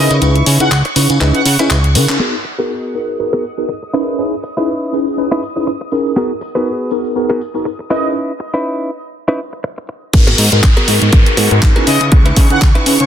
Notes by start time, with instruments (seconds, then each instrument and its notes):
Already playing: tine electric piano C#4 D#4 E4 G#4 A#4, clean electric guitar D#4 E4 B4, analog polysynth D#5, string machine C#6
0.10 analog synth bass C#3, closed hi-hat, tambourine
0.21 analog synth bass C#2, tine electric piano C#4 D#4 E4 G#4 B4, closed hi-hat, tambourine
0.36 closed hi-hat
0.46 analog synth bass C#3, open hi-hat, tambourine
0.60 analog synth bass C#3, tine electric piano C#4 D#4 E4 G#4 B4, analog polysynth F#5, closed hi-hat, tambourine
0.71 analog synth bass C#2, clap, closed hi-hat, tambourine
0.85 muted clean electric guitar stroke, closed hi-hat
0.96 analog synth bass C#3, tine electric piano C#4 D#4 E4 G#4 B4, muted clean electric guitar stroke, open hi-hat, tambourine
1.10 analog synth bass C#3, closed hi-hat, tambourine
1.20 analog synth bass C#2, tine electric piano C#4 D#4 E4 G#4 B4, clean electric guitar D#4 E4 B4, clap, closed hi-hat
1.35 analog synth bass C#3, analog polysynth F#5, closed hi-hat
1.46 analog synth bass C#3, analog polysynth F#5, open hi-hat, tambourine
1.59 analog synth bass C#3, tine electric piano C#4 D#4 E4 G#4 B4, clean electric guitar D#4 E4 B4, closed hi-hat, tambourine
1.70 analog synth bass C#2, clap, closed hi-hat, tambourine
1.84 closed hi-hat
1.95 analog synth bass C#3, tine electric piano C#4 D#4 E4 G#4 A#4, muted clean electric guitar stroke, open hi-hat, tambourine
2.09 analog synth bass C#3, clap
2.20 clean electric guitar B3 F#4 G#4 A#4, tine electric piano B3 D#4 F#4 G#4, string machine D#6
2.45 muted clean electric guitar stroke, tambourine
2.58 tine electric piano B3 D#4 F#4 G#4 A#4, clean electric guitar B3 F#4 G#4 A#4
2.94 tine electric piano B3 D#4 F#4 G#4 A#4, tambourine
3.08 tambourine
3.19 tine electric piano B3 D#4 F#4 G#4 A#4, tambourine
3.33 clean electric guitar B3 F#4 G#4 A#4
3.44 tambourine
3.57 tine electric piano B3 D#4 F#4 G#4 A#4, muted clean electric guitar stroke, tambourine
3.69 muted clean electric guitar stroke, tambourine
3.83 muted clean electric guitar stroke
3.93 tine electric piano C#4 D#4 E4 G#4 A#4, clean electric guitar C#4 D#4 E4 B4, tambourine
4.07 tambourine
4.18 tine electric piano C#4 D#4 E4 G#4 B4, tambourine
4.43 muted clean electric guitar stroke, tambourine
4.57 tine electric piano C#4 D#4 E4 G#4 B4, clean electric guitar C#4 D#4 E4 B4, tambourine
4.67 tambourine
4.93 tine electric piano C#4 D#4 E4 G#4 B4, tambourine
5.07 tambourine
5.17 tine electric piano C#4 D#4 E4 G#4 B4, tambourine
5.31 clean electric guitar C#4 D#4 E4 B4
5.43 tambourine
5.56 tine electric piano C#4 D#4 E4 G#4 B4, muted clean electric guitar stroke, tambourine
5.67 muted clean electric guitar stroke, tambourine
5.81 muted clean electric guitar stroke
5.91 tine electric piano C#4 D#4 E4 G#4 A#4, muted clean electric guitar stroke, tambourine
6.06 tambourine
6.16 clean electric guitar B3 F#4 G#4 A#4, tine electric piano B3 D#4 F#4 G#4 A#4, tambourine
6.41 muted clean electric guitar stroke, tambourine
6.55 tine electric piano B3 D#4 F#4 G#4 A#4, clean electric guitar B3 F#4 G#4 B4, tambourine
6.66 tambourine
6.91 tine electric piano B3 D#4 F#4 G#4 A#4, tambourine
7.04 tambourine
7.15 tine electric piano B3 D#4 F#4 G#4 A#4, tambourine
7.30 clean electric guitar B3 F#4 G#4 A#4
7.41 tambourine
7.54 tine electric piano B3 D#4 F#4 G#4 A#4, muted clean electric guitar stroke, tambourine
7.65 muted clean electric guitar stroke, tambourine
7.79 muted clean electric guitar stroke
7.90 tine electric piano C#4 D#4 E4 G#4 A#4, clean electric guitar C#4 D#4 E4 B4, analog polysynth D#5, tambourine
8.03 tambourine
8.40 muted clean electric guitar stroke
8.54 clean electric guitar C#4 D#4 E4 B4
9.28 clean electric guitar C#4 D#4 E4 B4
9.53 muted clean electric guitar stroke
9.64 muted clean electric guitar stroke
9.78 muted clean electric guitar stroke
9.89 muted clean electric guitar stroke
10.13 analog synth bass G#1, tine electric piano B3 D#4 F#4 G#4 A#4, string machine C#6, kick, closed hi-hat, crash, downlifter
10.27 clean electric guitar B3 F#4 G#4 A#4, closed hi-hat
10.38 analog synth bass G#2, open hi-hat
10.52 analog synth bass G#2, tine electric piano B3 D#4 F#4 G#4 A#4, closed hi-hat
10.63 analog synth bass G#1, muted clean electric guitar stroke, kick, clap, closed hi-hat
10.77 clean electric guitar B3 F#4 G#4 A#4, closed hi-hat
10.88 analog synth bass G#2, tine electric piano B3 D#4 F#4 G#4 A#4, open hi-hat
11.02 analog synth bass G#2, closed hi-hat
11.12 analog synth bass G#1, tine electric piano B3 D#4 F#4 G#4 A#4, muted clean electric guitar stroke, kick, closed hi-hat
11.26 closed hi-hat
11.37 analog synth bass G#2, tine electric piano B3 D#4 F#4 G#4 A#4, muted clean electric guitar stroke, open hi-hat
11.51 analog synth bass G#2, tine electric piano B3 D#4 F#4 G#4 A#4, muted clean electric guitar stroke, closed hi-hat
11.62 analog synth bass G#1, kick, clap, closed hi-hat
11.76 clean electric guitar B3 F#4 G#4 A#4, tine electric piano C#4 D#4 E4 G#4 B4, closed hi-hat
11.87 analog synth bass C#3, clean electric guitar C#4 D#4 E4 B4, analog polysynth D#5, open hi-hat
12.01 analog synth bass C#3, closed hi-hat
12.12 analog synth bass C#2, tine electric piano C#4 D#4 E4 G#4 B4, kick, closed hi-hat
12.25 clean electric guitar C#4 D#4 E4 B4, closed hi-hat
12.36 analog synth bass C#3, kick, open hi-hat
12.50 analog synth bass C#3, tine electric piano C#4 D#4 E4 G#4 B4, analog polysynth F#5, closed hi-hat
12.61 analog synth bass C#2, muted clean electric guitar stroke, kick, clap, closed hi-hat
12.75 clean electric guitar C#4 D#4 E4 B4, closed hi-hat
12.86 analog synth bass C#3, tine electric piano C#4 D#4 E4 G#4 B4, open hi-hat
13.00 analog synth bass C#3, analog polysynth C#5, closed hi-hat